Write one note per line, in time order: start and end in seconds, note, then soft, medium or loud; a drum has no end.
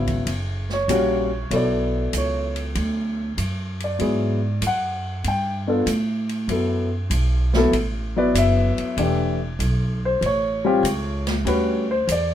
0.00 0.25 G#1 medium
0.00 0.27 C#3 medium
0.00 0.27 F#3 soft
0.00 0.28 B3 medium
0.00 0.28 E4 medium
0.07 kick soft
0.07 ride soft
0.26 0.87 F#1 medium
0.26 ride medium
0.69 1.49 C#5 medium
0.69 snare soft
0.88 1.49 A#1 medium
0.88 1.28 G3 medium
0.88 1.28 A#3 medium
0.88 1.29 C#4 medium
0.88 1.29 F#4 medium
0.88 hi-hat pedal medium
0.88 ride medium
1.51 2.12 B1 medium
1.51 3.26 F#3 soft
1.51 3.27 B3 soft
1.51 3.27 E4 soft
1.51 3.27 A4 medium
1.51 1.55 C#5 medium
1.51 ride medium
1.56 2.12 D5 medium
2.13 2.74 C#2 medium
2.13 hi-hat pedal medium
2.13 ride medium
2.17 2.57 C#5 medium
2.56 ride soft
2.75 3.36 D2 medium
2.75 ride medium
3.38 3.98 F#2 medium
3.38 hi-hat pedal soft
3.38 ride medium
3.80 4.60 D5 medium
3.80 ride soft
3.99 4.61 G#2 medium
3.99 4.38 F#3 soft
3.99 4.39 B3 soft
3.99 4.39 E4 soft
3.99 4.39 G#4 medium
3.99 ride medium
4.61 5.22 F#2 medium
4.61 hi-hat pedal medium
4.61 ride medium
4.67 5.23 F#5 medium
5.24 5.85 G2 medium
5.24 5.53 G5 medium
5.24 ride medium
5.67 5.85 B3 medium
5.67 5.85 D4 soft
5.67 5.86 F4 soft
5.67 5.86 A4 medium
5.86 6.47 A2 medium
5.86 hi-hat pedal soft
5.86 ride medium
6.29 ride soft
6.48 7.09 F#2 medium
6.48 6.88 F#3 soft
6.48 6.88 B3 soft
6.48 6.88 E4 soft
6.48 6.89 A4 soft
6.48 ride medium
7.10 7.71 B1 medium
7.10 hi-hat pedal medium
7.10 ride medium
7.53 7.72 F#3 medium
7.53 7.72 B3 medium
7.53 7.73 E4 medium
7.53 7.73 A4 medium
7.53 snare medium
7.72 8.33 A1 medium
7.72 ride medium
8.16 8.94 F#3 medium
8.16 8.95 B3 medium
8.16 8.95 E4 medium
8.16 8.95 B4 medium
8.16 8.36 D5 medium
8.34 8.75 F#1 medium
8.34 9.38 E5 medium
8.34 hi-hat pedal medium
8.34 ride medium
8.77 muted upright bass stroke soft
8.77 ride soft
8.97 9.58 E1 medium
8.97 9.36 E3 medium
8.97 9.37 A3 soft
8.97 9.37 D4 medium
8.97 9.37 G4 medium
8.97 ride medium
9.59 10.20 B1 medium
9.59 hi-hat pedal soft
9.59 ride medium
10.05 10.23 C5 medium
10.21 10.82 A1 medium
10.21 ride medium
10.26 11.25 C#5 medium
10.65 10.82 G3 medium
10.65 10.83 C4 medium
10.65 10.83 F4 medium
10.65 10.83 G4 medium
10.83 11.44 C#2 medium
10.83 hi-hat pedal medium
10.83 ride medium
11.27 snare medium
11.27 ride soft
11.45 12.06 D2 medium
11.45 11.85 G3 medium
11.45 11.85 C#4 medium
11.45 11.85 F#4 medium
11.45 11.86 B4 medium
11.45 ride medium
11.91 12.09 C5 medium
12.07 12.34 E2 medium
12.07 hi-hat pedal medium
12.07 ride medium
12.12 12.34 D5 medium